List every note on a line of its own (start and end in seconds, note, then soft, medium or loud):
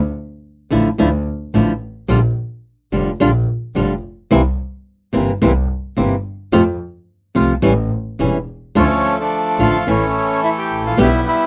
0.00 0.11 D2 medium
0.70 0.95 A1 medium
0.70 0.88 D3 medium
0.70 0.88 F3 medium
0.70 0.88 A3 medium
0.70 0.89 D4 medium
0.70 0.89 E4 medium
0.98 1.22 D2 medium
0.98 1.08 D3 medium
0.98 1.08 F3 medium
0.98 1.08 A3 medium
0.98 1.08 D4 medium
0.98 1.08 E4 medium
1.54 1.78 A1 medium
1.54 1.71 D3 medium
1.54 1.71 F3 medium
1.54 1.72 A3 medium
1.54 1.72 D4 medium
1.54 1.72 E4 medium
2.08 2.33 A#1 medium
2.08 2.18 D3 medium
2.08 2.18 G3 medium
2.08 2.18 D4 loud
2.08 2.19 F4 medium
2.92 3.16 F1 medium
2.92 3.10 D3 medium
2.92 3.10 G3 medium
2.92 3.10 D4 medium
2.92 3.10 F4 medium
3.20 3.44 A#1 medium
3.20 3.29 D3 medium
3.20 3.30 G3 medium
3.20 3.30 D4 medium
3.20 3.30 F4 medium
3.75 3.99 F1 medium
3.75 3.93 D3 medium
3.75 3.93 G3 medium
3.75 3.93 D4 medium
3.75 3.93 F4 medium
4.31 4.55 C2 medium
4.31 4.40 C3 medium
4.31 4.40 E3 medium
4.31 4.40 A#3 medium
4.31 4.40 C4 medium
4.31 4.41 E4 loud
5.13 5.37 G1 medium
5.13 5.30 C3 medium
5.13 5.31 E3 medium
5.13 5.31 A#3 medium
5.13 5.31 C4 medium
5.13 5.31 E4 medium
5.42 5.65 C2 medium
5.42 5.51 C3 medium
5.42 5.51 E3 medium
5.42 5.51 A#3 medium
5.42 5.51 C4 medium
5.42 5.51 E4 medium
5.97 6.21 G1 medium
5.97 6.14 C3 medium
5.97 6.14 E3 medium
5.97 6.14 A#3 medium
5.97 6.14 C4 medium
5.97 6.14 E4 medium
6.52 6.76 F2 medium
6.52 6.61 C3 medium
6.52 6.62 F3 medium
6.52 6.61 A3 medium
6.52 6.62 C4 loud
6.52 6.62 F4 medium
7.35 7.59 C2 medium
7.35 7.52 C3 medium
7.35 7.52 F3 medium
7.35 7.52 A3 medium
7.35 7.53 C4 medium
7.35 7.53 F4 medium
7.62 7.88 A1 medium
7.62 7.72 E3 medium
7.62 7.72 G3 medium
7.62 7.72 C#4 medium
7.62 7.72 E4 medium
8.19 8.44 E1 medium
8.19 8.36 E3 medium
8.19 8.37 G3 medium
8.19 8.37 C#4 medium
8.19 8.37 E4 medium
8.75 8.99 D2 medium
8.75 8.84 D3 medium
8.75 9.18 F3 medium
8.75 8.85 A3 medium
8.75 9.18 A3 medium
8.75 9.16 C#4 medium
8.75 8.85 D4 medium
8.75 8.85 F4 medium
9.20 9.84 F3 medium
9.20 9.84 A3 soft
9.20 9.58 D4 medium
9.59 9.82 A1 medium
9.59 9.76 D3 medium
9.59 9.76 A3 medium
9.59 9.76 D4 medium
9.59 9.76 F4 medium
9.59 9.89 F4 medium
9.87 10.10 A1 soft
9.87 10.04 E3 medium
9.87 10.95 E3 medium
9.87 10.04 A3 medium
9.87 10.95 A3 medium
9.87 10.04 C#4 medium
9.87 10.40 C#4 medium
9.87 10.04 E4 medium
10.44 10.50 E4 medium
10.58 10.83 G4 medium
10.71 10.96 A1 medium
10.87 10.98 F4 medium
10.97 11.21 B1 medium
10.97 11.06 B2 medium
10.97 11.07 D3 medium
10.97 11.07 G3 medium
10.97 11.47 G3 medium
10.97 11.07 B3 loud
10.97 11.47 B3 medium
10.97 11.25 E4 loud
10.97 11.07 G4 loud
11.28 11.47 E4 medium